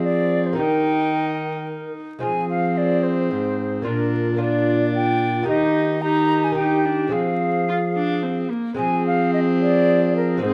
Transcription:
Already playing: F3 G#3 C4 G#4 C5
0.04 D5
0.46 C5
0.53 A#3 D#4 G4
0.57 D#3 D#4 A#4 G5
2.19 F3 G#3 C4 F4 G#5
2.23 C4 G#4
2.49 F5
2.78 D5
3.03 C5
3.31 G#2
3.82 A#2 A#3 D4 F4
3.86 D4 A#4
4.36 A#3 D4 F4
4.40 D4 F4 D5
4.95 G5
5.43 D#3 A#3 D#4 G4
5.48 D#3 D#4 G4 D#5
6.02 D#4 G4 A#5
6.44 G#5
6.52 A#3 D#4 G4 G5
6.57 D#4 G4
6.85 D4
7.08 F3 G#3 C4 G#4 F5
7.12 C4
7.68 F4
7.96 D4
8.22 C4
8.50 A#3
8.74 G#3 C4 G#4 G#5
8.78 F3 G#4
9.07 F5
9.34 D#5
9.61 D5
10.16 A#4
10.37 G#3 C4 G#4
10.41 G#2 C4 G#4 C5

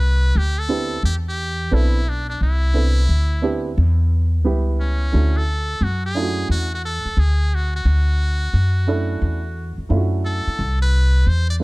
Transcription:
Already playing: C2 B4
0.35 D2 G4
0.59 A4
0.68 B3 C4 D4 E4 G4
1.03 E2 G4
1.29 G4
1.71 B1 B3 C4 D4 E4 A4
2.09 D4
2.30 D4
2.41 C2 E4
2.74 B3 C4 D4 E4 A4
3.09 D2
3.42 B3 C4 D4 E4 G4
3.78 E2
4.44 C#2 G3 B3 E4 G4
4.80 C#4
5.12 D2 A3 C#4 D4 E4 F#4
5.37 A4
5.81 F#2 F#4
6.06 G#4
6.14 A3 C#4 D4 E4 F4
6.22 F#4
6.49 E2 F#4
6.75 F#4
6.85 A4
7.05 muted upright bass stroke
7.17 D2 G#4
7.55 F#4
7.76 F#4
7.85 D2
8.54 F#2
8.87 A3 C#4 D4 E4 A4
9.22 E2
9.78 muted upright bass stroke
9.89 F#2 A3 C#4 D4 E4 F4
9.97 F#4
10.26 A4
10.47 muted upright bass stroke
10.59 C2
10.82 B4
11.27 E2 C5
11.50 D5
11.60 G3

